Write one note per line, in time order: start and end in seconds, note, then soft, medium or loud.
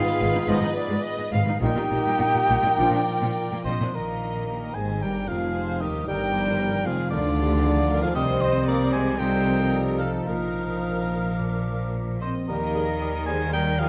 0.00 1.55 G#2 medium
0.00 1.57 G#3 medium
0.00 1.28 B3 medium
0.00 1.52 D#4 medium
0.00 1.28 F4 medium
0.00 1.62 G#4 medium
0.00 1.62 B4 medium
0.00 1.27 D#5 medium
0.00 2.16 D#5 medium
0.00 0.47 F5 medium
0.00 0.50 F5 loud
0.05 0.11 G#2 medium
0.05 0.13 B3 medium
0.19 0.27 G#1 medium
0.19 0.25 G#2 medium
0.19 0.26 G#3 medium
0.33 0.39 G#2 medium
0.33 0.40 D#4 medium
0.47 0.55 G#1 medium
0.47 0.67 G#2 medium
0.47 0.53 G#2 medium
0.47 0.67 F3 medium
0.47 0.55 G#3 medium
0.47 0.69 B3 medium
0.47 0.69 D#4 medium
0.47 0.76 D#5 loud
0.47 0.76 D#5 medium
0.61 0.67 G#2 medium
0.61 0.69 D#4 medium
0.76 1.04 D5 loud
0.76 1.04 D5 medium
0.89 0.95 G#2 medium
0.89 0.96 G#3 medium
1.03 1.33 D#5 loud
1.03 1.32 D#5 medium
1.17 1.23 G#2 medium
1.17 1.24 B3 medium
1.31 1.38 G#1 medium
1.31 1.37 G#2 medium
1.31 1.38 G#3 medium
1.31 1.61 F5 loud
1.31 1.40 F5 medium
1.44 1.52 G#2 medium
1.44 2.60 A#2 medium
1.44 1.54 D#4 medium
1.49 2.75 G3 medium
1.53 2.77 D#4 medium
1.58 1.66 A#2 medium
1.58 1.82 D#3 medium
1.58 2.81 D#4 medium
1.58 2.73 A#4 medium
1.58 3.63 A#4 medium
1.58 2.79 D#5 medium
1.62 1.68 A#1 medium
1.62 1.83 A#2 medium
1.62 1.68 G3 medium
1.62 3.63 A#3 medium
1.62 1.83 A#3 medium
1.62 1.83 D#4 medium
1.62 2.79 G4 medium
1.62 3.63 G5 medium
1.62 3.63 G5 loud
1.75 1.82 A#2 medium
1.75 1.83 D#4 medium
1.91 1.98 A#1 medium
1.91 1.97 A#2 medium
1.91 1.97 A#3 medium
2.05 2.11 A#2 medium
2.05 2.12 G3 medium
2.19 2.27 A#1 medium
2.19 2.26 A#2 medium
2.19 2.27 D#4 medium
2.34 2.40 A#2 medium
2.34 2.42 A#3 medium
2.49 2.56 A#1 medium
2.49 2.55 A#2 medium
2.49 2.56 G3 medium
2.61 3.88 A#2 medium
2.61 2.69 A#2 medium
2.65 3.90 F3 medium
2.65 2.71 D#4 medium
2.70 3.93 D4 medium
2.74 2.83 A#2 medium
2.74 2.99 A#3 medium
2.74 2.99 D4 medium
2.74 6.59 A#4 medium
2.74 3.64 D5 medium
2.79 2.85 A#1 medium
2.79 3.00 A#2 medium
2.79 2.85 F3 medium
2.79 3.00 F3 medium
2.79 3.73 F4 medium
2.79 3.67 F4 medium
2.92 2.98 A#2 medium
2.92 3.00 D4 medium
3.22 3.28 A#2 medium
3.22 3.29 F3 medium
3.51 3.57 A#2 medium
3.51 3.58 A#3 medium
3.65 3.72 A#1 medium
3.65 3.71 A#2 medium
3.65 3.73 F3 medium
3.65 3.92 C4 medium
3.65 3.96 C5 medium
3.65 3.93 D#5 medium
3.80 3.86 A#2 medium
3.80 3.87 D4 medium
3.93 4.71 A#1 soft
3.93 4.71 A#2 soft
3.93 6.08 D#3 soft
3.93 4.74 A#3 soft
3.93 4.71 A#3 soft
3.93 4.76 A#4 soft
3.93 4.76 A#4 medium
3.93 4.73 D#5 soft
3.93 4.74 D#5 soft
3.93 4.76 A#5 medium
4.22 5.28 D#4 soft
4.49 5.55 G4 soft
4.74 5.02 G#1 soft
4.74 5.02 G#2 medium
4.74 5.02 G#3 soft
4.74 5.03 G#4 medium
4.74 5.02 C5 soft
4.74 5.02 C5 medium
4.74 5.81 D#5 soft
4.74 5.02 G#5 medium
4.74 5.04 G#5 medium
5.00 5.29 G1 medium
5.00 5.29 G2 medium
5.00 5.28 G3 soft
5.00 6.10 G3 soft
5.00 5.30 G3 medium
5.00 5.29 G4 medium
5.00 5.51 A#4 soft
5.00 5.29 A#4 medium
5.00 5.29 A#4 soft
5.00 5.27 G5 medium
5.00 5.30 G5 medium
5.28 5.82 F1 medium
5.28 5.81 F2 medium
5.28 5.80 F3 medium
5.28 5.83 F3 medium
5.28 6.10 D#4 soft
5.28 5.82 F4 medium
5.28 5.82 G#4 medium
5.28 5.81 G#4 soft
5.28 5.80 F5 medium
5.28 5.82 F5 medium
5.55 6.10 G4 soft
5.55 5.82 C5 medium
5.81 6.08 D#2 medium
5.81 6.07 D#3 medium
5.81 6.08 D#3 soft
5.81 6.09 D#3 medium
5.81 6.07 D#4 medium
5.81 6.08 G4 medium
5.81 6.08 A#4 medium
5.81 6.08 D#5 medium
5.81 5.87 D#5 medium
5.81 6.11 D#5 soft
6.06 6.84 G1 medium
6.06 6.84 G2 medium
6.06 7.10 D#3 medium
6.06 6.85 G3 medium
6.06 6.88 G3 medium
6.06 6.84 G3 medium
6.06 6.87 G4 medium
6.06 6.84 A#4 medium
6.06 6.34 A#4 medium
6.06 6.86 G5 medium
6.06 6.88 G5 medium
6.10 6.86 A#4 medium
6.34 7.37 F3 soft
6.34 6.60 C5 medium
6.60 7.63 A#4 soft
6.60 6.86 A#4 medium
6.84 7.12 F1 medium
6.84 7.12 F2 medium
6.84 7.12 F3 medium
6.84 7.14 F3 medium
6.84 7.10 F4 medium
6.84 7.89 F4 soft
6.84 7.12 G#4 medium
6.84 7.13 G#4 medium
6.84 7.11 F5 medium
6.84 7.10 F5 medium
7.10 8.03 D2 medium
7.10 8.02 D3 medium
7.10 8.03 D3 medium
7.10 8.05 D3 medium
7.10 8.18 D#3 medium
7.10 8.05 D4 medium
7.10 8.00 F4 medium
7.10 8.02 F4 medium
7.10 7.20 A#4 medium
7.10 8.00 D5 medium
7.10 8.03 D5 medium
7.38 8.18 F3 soft
7.38 7.64 G4 medium
7.64 7.90 G#4 medium
7.64 8.18 A#4 medium
7.90 8.18 F4 medium
7.90 8.15 A#4 medium
8.01 8.16 F2 medium
8.01 8.15 F3 medium
8.01 8.16 F3 medium
8.01 8.15 F4 medium
8.01 8.08 G#4 medium
8.01 8.16 G#4 medium
8.01 8.13 F5 medium
8.01 8.15 F5 medium
8.14 10.24 C2 medium
8.14 9.18 C3 medium
8.14 10.24 C3 medium
8.14 8.41 D#3 medium
8.14 9.15 G3 medium
8.14 9.16 G3 medium
8.14 9.16 C4 medium
8.14 8.22 G4 medium
8.14 8.23 G4 medium
8.14 8.66 C5 medium
8.14 9.19 C5 medium
8.14 8.43 D#5 medium
8.14 9.15 D#6 medium
8.39 9.21 G3 medium
8.39 8.52 C4 medium
8.39 8.66 C5 medium
8.39 8.66 D#5 medium
8.39 8.49 D#5 medium
8.66 8.79 A#3 medium
8.66 8.92 A#4 medium
8.66 8.92 D5 medium
8.66 8.93 D5 medium
8.66 9.19 D5 medium
8.91 9.19 G#3 medium
8.91 9.22 G4 soft
8.91 9.18 C5 medium
8.91 9.19 C5 medium
8.91 9.20 G#5 medium
9.18 10.30 C3 medium
9.18 10.26 F3 medium
9.18 12.21 F3 medium
9.18 9.99 G3 medium
9.18 11.38 D#4 medium
9.18 10.27 A4 medium
9.18 9.98 A#4 medium
9.18 10.00 A#4 medium
9.18 9.72 C5 medium
9.18 9.82 G5 medium
9.18 10.03 D#6 medium
9.47 10.55 F3 soft
9.73 10.00 G4 medium
9.73 10.30 A4 soft
9.99 10.27 F3 medium
9.99 11.10 F4 soft
9.99 10.28 A4 medium
9.99 10.28 A4 soft
9.99 10.28 A4 medium
9.99 10.11 F5 medium
10.27 12.25 A#1 medium
10.27 11.38 A#2 soft
10.27 12.25 A#2 soft
10.27 11.91 F3 medium
10.27 11.22 F3 soft
10.27 11.91 A#4 medium
10.27 12.21 A#4 medium
10.27 11.22 A#4 soft
10.27 11.90 F5 medium
10.27 11.39 D#6 soft
10.56 11.66 F3 soft
10.83 11.94 A#4 soft
11.11 12.21 F4 soft
11.37 12.51 A#2 soft
11.37 12.20 F3 soft
11.37 12.22 D4 soft
11.37 12.20 A#4 soft
11.37 12.21 D6 soft
11.67 12.51 F3 soft
11.95 13.89 A#4 soft
12.21 12.48 C4 soft
12.21 12.51 F4 soft
12.21 12.34 C5 medium
12.21 12.29 D#5 medium
12.21 12.46 D#5 soft
12.48 13.89 D#2 medium
12.48 13.89 D#3 medium
12.48 12.61 G3 medium
12.48 13.89 G3 medium
12.48 13.28 A#3 medium
12.48 13.89 A#3 medium
12.48 12.73 G4 medium
12.48 12.60 A#4 medium
12.48 13.26 A#4 medium
12.48 13.26 D#5 medium
12.48 13.27 D#5 medium
12.48 12.54 D#6 medium
12.75 12.87 G3 medium
12.75 13.79 D#4 soft
12.75 12.83 G#4 medium
12.75 12.87 A#4 medium
12.75 12.81 D#6 soft
13.01 13.13 G3 medium
13.01 13.89 G4 soft
13.01 13.89 A#4 medium
13.01 13.14 A#4 medium
13.01 13.08 D#6 medium
13.26 13.40 G3 soft
13.26 13.40 G#3 medium
13.26 13.40 A#4 medium
13.26 13.54 C5 medium
13.26 13.89 D#5 medium
13.26 13.53 G#5 medium
13.26 13.34 D#6 medium
13.52 13.65 G3 medium
13.52 13.80 G3 medium
13.52 13.89 G3 medium
13.52 13.60 A#4 medium
13.52 13.62 A#4 medium
13.52 13.67 A#4 medium
13.52 13.81 G5 medium
13.52 13.60 D#6 medium
13.79 13.89 F3 medium
13.79 13.89 G3 medium
13.79 13.89 D#4 medium
13.79 13.89 G#4 medium
13.79 13.89 A#4 medium
13.79 13.89 F5 medium
13.79 13.87 D#6 medium